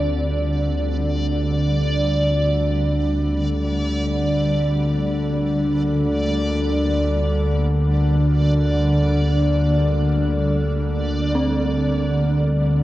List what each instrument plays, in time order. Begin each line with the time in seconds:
Already playing: synth drone D2 D3, ambient pad D3 G3 C4 F4, synth texture D5
3.84 ambient pad D4
4.32 ambient pad A#3
11.35 synth bell C4